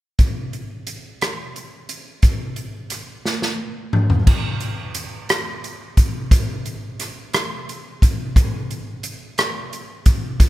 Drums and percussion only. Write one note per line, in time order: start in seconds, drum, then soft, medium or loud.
0.19 kick medium
0.19 closed hi-hat medium
0.53 closed hi-hat soft
0.87 closed hi-hat medium
1.21 cross-stick medium
1.21 closed hi-hat soft
1.56 closed hi-hat soft
1.89 closed hi-hat soft
2.22 kick medium
2.22 closed hi-hat medium
2.56 closed hi-hat soft
2.90 cross-stick soft
2.90 closed hi-hat medium
3.25 snare soft
3.42 snare soft
3.93 mid tom medium
4.10 floor tom medium
4.27 kick medium
4.27 crash medium
4.60 closed hi-hat soft
4.94 closed hi-hat medium
5.29 cross-stick medium
5.29 closed hi-hat medium
5.64 closed hi-hat soft
5.97 kick medium
5.97 closed hi-hat medium
6.31 kick medium
6.31 closed hi-hat medium
6.66 closed hi-hat soft
7.00 cross-stick soft
7.00 closed hi-hat medium
7.33 cross-stick medium
7.33 closed hi-hat medium
7.69 closed hi-hat soft
8.02 kick medium
8.02 closed hi-hat medium
8.36 kick medium
8.36 closed hi-hat medium
8.71 closed hi-hat soft
9.03 closed hi-hat medium
9.38 cross-stick medium
9.38 closed hi-hat medium
9.73 closed hi-hat soft
10.06 kick medium
10.06 closed hi-hat medium
10.40 kick medium
10.40 closed hi-hat medium